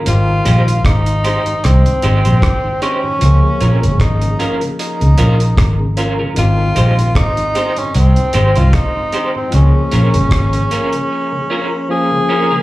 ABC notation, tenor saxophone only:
X:1
M:4/4
L:1/16
Q:"Swing 16ths" 1/4=76
K:Ab
V:1 name="Tenor saxophone"
F4 E4 C6 D2- | D4 E3 z E6 z2 | F4 E3 D C3 F E3 C | D12 A4 |]